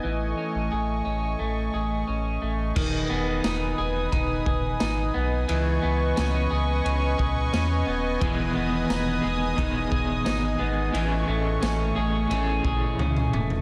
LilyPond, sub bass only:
\new Staff \with { instrumentName = "Sub bass" } { \clef bass \time 4/4 \key e \major \tempo 4 = 88 a,,8 r16 a,,16 a,,8 a,,8 a,,8 a,,8 a,,8 a,,8 | e,,8 e,,8 e,,8 e,,8 e,,8 e,,8 gis,,8 b,,8 | cis,8 cis,8 cis,8 cis,8 cis,8 cis,8 e,8 dis,,8 | e,,8 e,,8 e,,8 e,,8 e,,8 e,,8 gis,,8 gis,,8 |
a,,8 a,,8 a,,8 a,,8 a,,8 a,,8 cis,8 dis,,8 | }